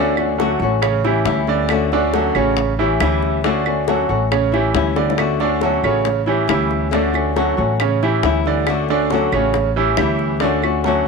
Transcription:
Already playing: D2 D3 A3 C#4 D4 F#4 D5
0.17 A3 C#4 F#4, high bongo, claves
0.38 D3 F#3 A3 C#4 F#4 A4, high bongo
0.60 A1 A3 C#4 F#4
0.82 C#3 C#4 C#5, muted nylon-string guitar stroke, high bongo, claves
1.04 E3 G3 C#4 E4 G4, high bongo
1.25 D2 E3 G3 C#4 E4, high bongo, low bongo
1.47 D3 D5, high bongo
1.69 D3 A3 C#4 F#4, high bongo, claves
1.92 D3 A3 C#4 D4 F#4 D5, high bongo
2.13 D3 F#3 A3 C#4 F#4 A4, high bongo
2.35 A1 C#3 A3 C#4 F#4 C#5, high bongo, claves
2.57 muted nylon-string guitar stroke, high bongo
2.79 E3 G3 C#4 E4 G4
3.00 D2 E3 G3 C#4 E4 G4, high bongo, low bongo, claves
3.22 high bongo
3.44 D3 A3 C#4 D4 F#4 D5, high bongo
3.66 A3 C#4 F#4, high bongo, claves
3.87 D3 F#3 A3 C#4 F#4 A4, high bongo
4.09 A1 A3 C#4 F#4
4.31 C#3 C#4 C#5, muted nylon-string guitar stroke, high bongo, claves
4.52 E3 G3 C#4 E4 G4, high bongo
4.74 D2 E3 G3 C#4 E4, high bongo, low bongo
4.96 D3 D5, high bongo
5.10 low bongo
5.18 D3 A3 C#4 F#4, high bongo, claves
5.40 D3 A3 C#4 D4 F#4 D5, high bongo
5.61 D3 F#3 A3 C#4 F#4 A4, high bongo
5.83 A1 C#3 A3 C#4 F#4 C#5, high bongo, claves
6.05 muted nylon-string guitar stroke, high bongo
6.26 E3 G3 C#4 E4 G4
6.48 D2 E3 G3 C#4 E4 G4, high bongo, low bongo, claves
6.71 high bongo
6.91 D3 A3 C#4 D4 F#4 D5, high bongo
7.13 A3 C#4 F#4, high bongo, claves
7.36 D3 F#3 A3 C#4 F#4 A4, high bongo
7.57 A1 A3 C#4 F#4
7.80 C#3 C#4 C#5, muted nylon-string guitar stroke, high bongo, claves
8.03 E3 G3 C#4 E4 G4, high bongo
8.23 D2 E3 G3 C#4 E4, high bongo, low bongo
8.46 D3 D5, high bongo
8.67 D3 A3 C#4 F#4, high bongo, claves
8.89 D3 A3 C#4 D4 F#4 D5, high bongo
9.10 D3 F#3 A3 C#4 F#4 A4, high bongo
9.32 A1 C#3 A3 C#4 F#4 C#5, high bongo, claves
9.54 muted nylon-string guitar stroke, high bongo
9.76 E3 G3 C#4 E4 G4
9.97 D2 E3 G3 C#4 E4 G4, high bongo, low bongo, claves
10.01 E4
10.19 high bongo
10.40 D3 A3 C#4 D4 F#4 D5, high bongo
10.62 A3 C#4 F#4, high bongo, claves
10.84 D3 F#3 A3 C#4 F#4 A4, high bongo

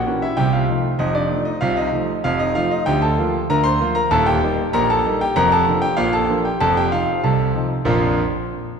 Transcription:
Already playing: F#4 F#5
0.06 E3 A#3 C#4
0.22 E4 E5
0.37 C2 C3 G4 G5
0.53 F4 F5
0.69 F3 A3 D#4
0.99 F1 F2 D#4 D#5
1.15 D4 D5
1.31 F3 A3 D#4
1.45 D#4 D#5
1.61 C2 C3 F4 F5
1.77 D#4 D#5
1.93 F3 A3 D#4
2.24 F1 F2 F4 F5
2.39 D#4 D#5
2.55 F3 A3 D#4 F4 F5
2.71 D#4 D#5
2.86 D2 D3 G4 G5
3.02 A4 A5
3.18 F3 A#3 F4
3.50 D2 D3 A#4 A#5
3.64 C5 C6
3.80 F3 A#3 F4
3.95 A#4 A#5
4.11 D#1 D#2 A4 A5
4.26 G4 G5
4.43 G3 A#3 D#4
4.73 A#1 A#2 A#4 A#5
4.90 A4 A5
5.06 G3 A#3 D#4
5.21 G4 G5
5.36 F1 F2 A#4 A#5
5.52 A4 A5
5.67 F3 A#3 D4
5.82 G4 G5
5.97 A#1 A#2 F4 F5
6.13 A4 A5
6.29 F3 A#3 D4
6.45 G4 G5
6.61 F1 F2 A4 A5
6.77 G4 G5
6.92 F3 C4 D#4 F4 F5
7.24 C2 C3 A4 A5
7.55 F3 C4 D#4
7.85 A#1 F2 F3 A#3 D4 F4 A#5

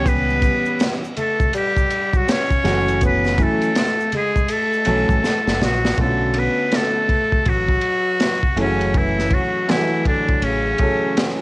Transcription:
Already playing: C#2 E3 G3 B3 C#4 G4
0.05 B3 B4, kick, ride, maracas
0.30 maracas
0.42 kick, ride, high conga, maracas
0.65 maracas
0.79 snare, hi-hat pedal, ride, maracas
1.04 maracas
1.17 A3 A4, ride, low conga, maracas
1.40 kick, maracas
1.53 G3 G4, ride, maracas
1.77 kick, maracas
1.90 ride, maracas
2.13 F#3 F#4, kick, high conga, maracas
2.28 C#4 C#5, snare, hi-hat pedal, ride, maracas
2.51 kick, maracas
2.64 F#1 E3 F#3 G#3 C#4 F#4, snare, ride, low conga, maracas
2.71 A3
2.88 ride, maracas
3.01 B3, kick, ride, maracas
3.06 B4
3.25 snare, maracas
3.38 E3 F#3 A3 C#4 E4, kick, ride, high conga, maracas
3.43 A4
3.62 ride, maracas
3.75 snare, hi-hat pedal, ride, maracas
4.00 maracas
4.12 G#3, ride, low conga, maracas
4.17 G#4
4.36 kick, maracas
4.48 A3 A4, ride, maracas
4.73 maracas
4.85 B1 E3 F#3 A3 C#4 A4, ride, maracas
5.09 A1, kick, high conga, maracas
5.24 snare, maracas
5.47 F#1, snare, maracas
5.61 A#1 F#3 F#4, snare, low conga, maracas
5.85 snare, maracas
5.97 B1 D3 A3 B3 C#4 F4 A4, kick, ride
6.05 F#4
6.34 B3, ride
6.39 B4
6.72 A3 A4, snare, hi-hat pedal, ride
7.09 kick, ride
7.32 kick
7.45 A1 F#3 F#4, kick, ride
7.68 kick
7.81 ride
8.20 snare, hi-hat pedal, ride
8.43 kick
8.56 F#1 E3 F#3 A3 C#4 E4, ride
8.60 C#3 C#4
8.64 F#4
8.81 ride
8.94 E3 E4, kick, ride
9.19 snare
9.31 F#3 F#4, kick, ride
9.68 E3 F#3 G3 E4 F#4 C#5, snare, hi-hat pedal, ride
9.75 A3
10.05 D3 D4, kick, ride
10.28 kick, ride
10.42 A1 C#3 C#4, ride
10.78 E3 F#3 A3 C#4 A4, kick, ride
11.17 snare, hi-hat pedal, ride

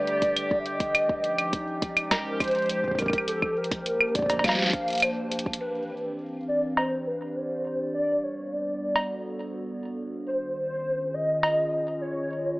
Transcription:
Already playing: D3 G3 A3 D4 G4 B4 D5
0.07 closed hi-hat
0.22 kick, closed hi-hat
0.36 closed hi-hat, claves
0.51 kick
0.59 E5
0.66 D#5, closed hi-hat
0.80 kick, closed hi-hat
0.95 F3, closed hi-hat, claves
1.09 kick
1.21 C#4 D#4, closed hi-hat
1.38 closed hi-hat, claves
1.53 kick, closed hi-hat
1.82 G#3, kick, closed hi-hat
1.89 C5
1.97 closed hi-hat, claves
2.11 A#4, kick, snare, closed hi-hat, cowbell
2.40 C5, kick, closed hi-hat, cabasa, claves
2.44 closed hi-hat
2.48 closed hi-hat
2.51 closed hi-hat
2.55 closed hi-hat
2.59 closed hi-hat
2.62 closed hi-hat
2.66 closed hi-hat
2.69 closed hi-hat
2.84 kick
2.88 kick
2.91 kick
2.95 kick, closed hi-hat, cabasa, claves
2.99 A#4, kick
3.02 kick
3.06 kick, claves
3.10 kick, closed hi-hat
3.13 kick
3.18 claves
3.28 A4, closed hi-hat
3.42 kick, claves
3.57 A#3 A#4
3.64 closed hi-hat
3.71 kick, closed hi-hat
3.77 D4 A5
3.86 closed hi-hat
4.01 claves
4.15 D5, kick, closed hi-hat
4.19 kick
4.22 kick
4.26 kick, closed hi-hat, cowbell, cabasa
4.30 kick
4.33 kick
4.37 kick, cowbell
4.41 F5, kick, snare, closed hi-hat, claves
4.44 kick, snare
4.49 snare, cowbell
4.55 snare
4.59 snare
4.62 snare
4.66 snare
4.70 kick, snare, closed hi-hat
4.88 closed hi-hat
4.90 closed hi-hat
4.93 closed hi-hat
4.95 closed hi-hat
4.98 closed hi-hat
5.00 closed hi-hat
5.02 C5, closed hi-hat, claves
5.32 closed hi-hat
5.39 closed hi-hat
5.46 kick
5.53 closed hi-hat
5.61 E3 B4, closed hi-hat, crash
5.71 C4
6.48 G4 D5
6.57 D5
6.77 C5, cowbell
7.06 B4
7.35 C5
7.94 G3 D5
8.23 C#5
8.30 B3
8.52 D5
8.88 F#4
8.96 A4, cowbell
10.27 D#3 C5
10.55 C#4
10.84 F4
10.90 G#4
11.14 D#5
11.43 cowbell
12.02 C#5

